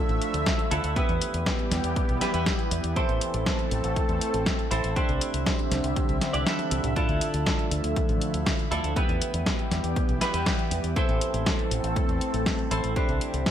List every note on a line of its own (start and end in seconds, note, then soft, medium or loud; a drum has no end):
0.00 0.92 D3 medium
0.00 0.94 F3 medium
0.00 0.94 A3 medium
0.00 0.68 D4 loud
0.00 0.68 E4 medium
0.00 0.68 F4 medium
0.00 0.68 A4 loud
0.00 0.94 E5 medium
0.09 0.19 A1 medium
0.09 closed hi-hat soft
0.22 closed hi-hat medium
0.34 0.44 D2 medium
0.34 closed hi-hat soft
0.46 kick loud
0.46 snare loud
0.46 closed hi-hat soft
0.59 closed hi-hat soft
0.71 0.81 D2 medium
0.71 0.94 D4 medium
0.71 0.94 E4 medium
0.71 0.94 F4 medium
0.71 0.94 A4 medium
0.71 closed hi-hat medium
0.84 0.94 D2 medium
0.84 closed hi-hat soft
0.96 4.92 E3 medium
0.96 2.94 G3 medium
0.96 2.19 B3 medium
0.96 2.94 B3 medium
0.96 2.19 E4 medium
0.96 2.94 G4 medium
0.96 2.19 G4 medium
0.96 2.19 B4 medium
0.96 kick loud
0.96 closed hi-hat medium
1.09 1.19 E2 medium
1.09 closed hi-hat soft
1.22 closed hi-hat medium
1.34 1.44 E2 medium
1.34 closed hi-hat medium
1.46 kick loud
1.46 snare loud
1.46 closed hi-hat medium
1.59 closed hi-hat soft
1.71 1.81 E2 medium
1.71 snare medium
1.71 closed hi-hat medium
1.84 1.94 E2 medium
1.84 closed hi-hat medium
1.96 kick loud
1.96 closed hi-hat medium
2.09 2.19 B1 medium
2.09 closed hi-hat soft
2.21 2.31 B3 medium
2.21 2.31 E4 medium
2.21 2.31 G4 medium
2.21 2.31 B4 medium
2.21 snare medium
2.21 closed hi-hat medium
2.34 2.44 E2 medium
2.34 2.93 B3 medium
2.34 2.93 E4 medium
2.34 2.93 G4 medium
2.34 2.93 B4 medium
2.34 closed hi-hat medium
2.46 kick loud
2.46 snare loud
2.46 closed hi-hat medium
2.59 closed hi-hat soft
2.71 2.81 E2 medium
2.71 closed hi-hat medium
2.84 2.94 E2 medium
2.84 closed hi-hat soft
2.96 4.95 A3 medium
2.96 4.68 C4 medium
2.96 4.95 C4 medium
2.96 4.68 E4 medium
2.96 4.94 A4 medium
2.96 4.68 A4 medium
2.96 4.68 C5 medium
2.96 kick loud
2.96 closed hi-hat medium
3.09 3.19 A1 medium
3.09 closed hi-hat soft
3.21 closed hi-hat medium
3.34 3.44 A1 medium
3.34 closed hi-hat medium
3.46 kick loud
3.46 snare loud
3.46 closed hi-hat medium
3.59 closed hi-hat soft
3.71 3.81 A1 medium
3.71 closed hi-hat medium
3.84 3.94 A1 medium
3.84 closed hi-hat medium
3.96 kick loud
3.96 closed hi-hat medium
4.09 4.19 E2 medium
4.09 closed hi-hat soft
4.21 closed hi-hat medium
4.34 4.44 A1 medium
4.34 closed hi-hat medium
4.46 kick loud
4.46 snare loud
4.46 closed hi-hat medium
4.59 closed hi-hat soft
4.71 4.81 A1 medium
4.71 4.93 C4 medium
4.71 4.93 E4 medium
4.71 4.93 A4 medium
4.71 4.93 C5 medium
4.71 closed hi-hat loud
4.84 4.94 A1 medium
4.84 closed hi-hat medium
4.96 6.95 D3 medium
4.96 6.95 G3 medium
4.96 6.94 C4 medium
4.96 6.18 D4 medium
4.96 6.18 E4 medium
4.96 6.18 G4 medium
4.96 6.18 C5 medium
4.96 8.93 E5 medium
4.96 kick loud
4.96 closed hi-hat medium
5.09 5.19 C2 medium
5.09 closed hi-hat soft
5.21 closed hi-hat loud
5.34 5.44 C2 medium
5.34 closed hi-hat medium
5.46 kick loud
5.46 snare loud
5.46 closed hi-hat medium
5.59 closed hi-hat soft
5.71 5.81 C2 medium
5.71 snare medium
5.71 closed hi-hat medium
5.84 5.94 C2 medium
5.84 closed hi-hat medium
5.96 kick loud
5.96 closed hi-hat medium
6.09 6.19 C2 medium
6.09 closed hi-hat soft
6.21 snare medium
6.21 closed hi-hat medium
6.33 6.44 C2 medium
6.33 6.43 D4 medium
6.33 6.43 E4 medium
6.33 6.43 G4 medium
6.33 6.43 D5 medium
6.33 closed hi-hat medium
6.46 6.93 D4 medium
6.46 6.93 E4 medium
6.46 6.93 G4 medium
6.46 6.93 A4 medium
6.46 snare loud
6.46 closed hi-hat medium
6.46 high tom medium
6.59 closed hi-hat soft
6.59 high tom medium
6.71 6.81 C2 medium
6.71 closed hi-hat loud
6.84 6.94 C2 medium
6.84 closed hi-hat medium
6.84 mid tom medium
6.96 8.94 D3 medium
6.96 8.94 F3 medium
6.96 8.94 A3 medium
6.96 8.68 D4 loud
6.96 8.68 E4 medium
6.96 8.68 F4 medium
6.96 8.68 A4 loud
6.96 kick loud
6.96 closed hi-hat medium
7.09 7.19 D2 medium
7.09 closed hi-hat soft
7.21 closed hi-hat loud
7.34 7.44 D2 medium
7.34 closed hi-hat medium
7.46 kick loud
7.46 snare loud
7.46 closed hi-hat medium
7.59 closed hi-hat soft
7.71 7.81 D2 medium
7.71 closed hi-hat medium
7.84 7.94 D2 medium
7.84 closed hi-hat medium
7.96 kick loud
7.96 closed hi-hat medium
8.09 8.19 A1 medium
8.09 closed hi-hat soft
8.21 closed hi-hat medium
8.34 8.44 D2 medium
8.34 closed hi-hat medium
8.46 kick loud
8.46 snare loud
8.46 closed hi-hat medium
8.59 closed hi-hat soft
8.71 8.81 D2 medium
8.71 8.94 D4 medium
8.71 8.94 E4 medium
8.71 8.94 F4 medium
8.71 8.94 A4 medium
8.71 closed hi-hat medium
8.84 8.94 D2 medium
8.84 closed hi-hat medium
8.96 12.92 E3 medium
8.96 10.94 G3 medium
8.96 10.18 B3 medium
8.96 10.94 B3 medium
8.96 10.18 E4 medium
8.96 10.94 G4 medium
8.96 10.18 G4 medium
8.96 10.18 B4 medium
8.96 kick loud
8.96 closed hi-hat medium
9.09 9.19 E2 medium
9.09 closed hi-hat soft
9.22 closed hi-hat medium
9.34 9.44 E2 medium
9.34 closed hi-hat medium
9.46 kick loud
9.46 snare loud
9.46 closed hi-hat medium
9.59 closed hi-hat soft
9.71 9.81 E2 medium
9.71 snare medium
9.71 closed hi-hat medium
9.84 9.94 E2 medium
9.84 closed hi-hat medium
9.96 kick loud
9.96 closed hi-hat medium
10.09 10.19 B1 medium
10.09 closed hi-hat soft
10.21 10.31 B3 medium
10.21 10.31 E4 medium
10.21 10.31 G4 medium
10.21 10.31 B4 medium
10.21 snare medium
10.21 closed hi-hat medium
10.34 10.44 E2 medium
10.34 10.93 B3 medium
10.34 10.93 E4 medium
10.34 10.93 G4 medium
10.34 10.93 B4 medium
10.34 closed hi-hat medium
10.46 kick loud
10.46 snare loud
10.46 closed hi-hat medium
10.59 closed hi-hat soft
10.71 10.81 E2 medium
10.71 closed hi-hat medium
10.84 10.94 E2 medium
10.84 closed hi-hat medium
10.96 12.94 A3 medium
10.96 12.68 C4 medium
10.96 12.94 C4 medium
10.96 12.69 E4 medium
10.96 12.94 A4 medium
10.96 12.68 A4 medium
10.96 12.68 C5 medium
10.96 kick loud
10.96 closed hi-hat soft
11.09 11.19 A1 medium
11.09 closed hi-hat soft
11.21 closed hi-hat medium
11.34 11.44 A1 medium
11.34 closed hi-hat medium
11.46 kick loud
11.46 snare loud
11.46 closed hi-hat soft
11.59 closed hi-hat soft
11.71 11.81 A1 medium
11.71 closed hi-hat medium
11.84 11.94 A1 medium
11.84 closed hi-hat medium
11.96 kick loud
11.96 closed hi-hat medium
12.09 12.19 E2 medium
12.09 closed hi-hat soft
12.21 closed hi-hat medium
12.34 12.44 A1 medium
12.34 closed hi-hat soft
12.46 kick loud
12.46 snare loud
12.46 closed hi-hat medium
12.59 closed hi-hat soft
12.71 12.81 A1 medium
12.71 12.93 C4 medium
12.71 12.93 E4 medium
12.71 12.93 A4 medium
12.71 12.93 C5 medium
12.71 closed hi-hat medium
12.84 12.94 A1 medium
12.84 closed hi-hat soft
12.96 13.51 D3 medium
12.96 13.51 G3 medium
12.96 13.51 C4 medium
12.96 13.51 D4 medium
12.96 13.51 E4 medium
12.96 13.51 G4 medium
12.96 13.51 C5 medium
12.96 kick loud
12.96 closed hi-hat soft
13.09 13.19 C2 medium
13.09 closed hi-hat soft
13.21 closed hi-hat medium
13.34 13.44 C2 medium
13.34 closed hi-hat medium
13.46 kick loud
13.46 snare loud
13.46 closed hi-hat soft